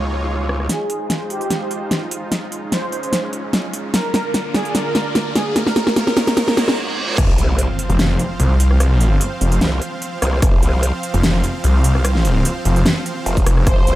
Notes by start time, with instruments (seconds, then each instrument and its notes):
Already playing: wobble bass C#2, supersaw synth G#3 D#4 F4 C#5, swell
0.49 cross-stick
0.60 cross-stick
0.69 supersaw synth G#3 D#4 F4 G#4 C5, snare, closed hi-hat, riser
0.90 closed hi-hat
1.10 snare, closed hi-hat
1.30 supersaw synth G4, closed hi-hat
1.41 closed hi-hat
1.50 snare, closed hi-hat
1.71 closed hi-hat
1.91 snare, closed hi-hat
2.11 closed hi-hat
2.32 supersaw synth G#3 C#4, snare, closed hi-hat
2.52 closed hi-hat
2.72 supersaw synth C5, snare, closed hi-hat
2.92 closed hi-hat
3.03 closed hi-hat
3.13 snare, closed hi-hat
3.33 closed hi-hat
3.53 snare, closed hi-hat
3.73 closed hi-hat
3.94 supersaw synth D3 A#3 D4 F4 A#4 D5, snare, closed hi-hat
4.14 snare, closed hi-hat
4.34 snare, closed hi-hat
4.54 supersaw synth G#4, snare, closed hi-hat
4.65 closed hi-hat
4.75 supersaw synth A#4, snare, closed hi-hat
4.95 snare, closed hi-hat
5.15 snare, closed hi-hat
5.35 supersaw synth G#4, snare, closed hi-hat
5.56 supersaw synth G#3 D#4 F4 A#4 C#5, snare, closed hi-hat
5.67 snare
5.76 snare, closed hi-hat
5.87 snare
5.96 supersaw synth A#4, snare, closed hi-hat
6.07 snare
6.17 snare, closed hi-hat
6.27 snare, closed hi-hat
6.37 supersaw synth A#4, snare, closed hi-hat, reverse cymbal
6.48 snare
6.57 supersaw synth A#4, snare, closed hi-hat
6.68 snare
7.18 wobble bass F1, supersaw synth F3 C4 C5 F5, kick, cross-stick, closed hi-hat, crash, impact
7.38 wobble bass C2, closed hi-hat
7.59 closed hi-hat
7.79 closed hi-hat
7.90 detuned saw bass F1, closed hi-hat
7.99 snare, closed hi-hat
8.19 closed hi-hat
8.40 detuned saw bass C2, closed hi-hat
8.60 closed hi-hat
8.71 cross-stick
8.80 cross-stick, closed hi-hat
9.01 closed hi-hat
9.21 closed hi-hat
9.41 detuned saw bass F1, closed hi-hat
9.52 closed hi-hat
9.61 wobble bass C2, snare, closed hi-hat
9.82 closed hi-hat
10.02 closed hi-hat
10.22 wobble bass C2, cross-stick, closed hi-hat
10.33 cross-stick
10.42 wobble bass F1, kick, cross-stick, closed hi-hat
10.63 wobble bass C2, closed hi-hat
10.83 closed hi-hat
11.03 closed hi-hat
11.14 detuned saw bass F1, closed hi-hat
11.23 snare, closed hi-hat
11.44 closed hi-hat
11.64 detuned saw bass C2, closed hi-hat
11.84 closed hi-hat
11.95 cross-stick
12.05 cross-stick, closed hi-hat
12.15 snare
12.25 closed hi-hat
12.45 closed hi-hat
12.65 detuned saw bass F1, closed hi-hat
12.76 closed hi-hat
12.86 snare, closed hi-hat
13.06 closed hi-hat
13.26 wobble bass F1, closed hi-hat
13.37 kick, closed hi-hat
13.46 detuned saw bass F1, cross-stick, closed hi-hat
13.57 cross-stick
13.67 wobble bass F1, supersaw synth C5 D#5, kick, cross-stick, closed hi-hat
13.87 wobble bass C2, closed hi-hat